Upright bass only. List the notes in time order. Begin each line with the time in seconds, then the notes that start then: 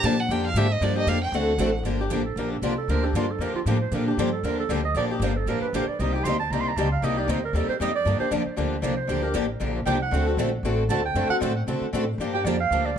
0.03 A#2
0.29 F2
0.54 G#2
0.81 G2
1.07 F2
1.32 D2
1.58 A1
1.83 G1
2.11 A1
2.36 A#1
2.62 C2
2.88 D2
3.13 G2
3.39 F2
3.54 muted upright bass stroke
3.66 A2
3.92 A#2
4.17 G2
4.43 D#2
4.69 D2
4.94 A#1
5.19 G1
5.46 A1
5.61 muted upright bass stroke
5.73 A#1
5.87 muted upright bass stroke
5.99 C2
6.25 D2
6.50 C2
6.76 C#2
7.02 C2
7.28 D2
7.53 D#2
7.68 muted upright bass stroke
7.80 F2
8.06 G2
8.21 muted upright bass stroke
8.31 D#2
8.46 muted upright bass stroke
8.57 D2
8.82 C2
9.09 D2
9.34 A1
9.61 A#1
9.86 C2
10.12 D2
10.37 A#1
10.63 A1
10.89 D2
11.15 F#2
11.29 muted upright bass stroke
11.41 A2
11.67 C3
11.81 muted upright bass stroke
11.93 A2
12.18 G2
12.45 F2
12.70 D2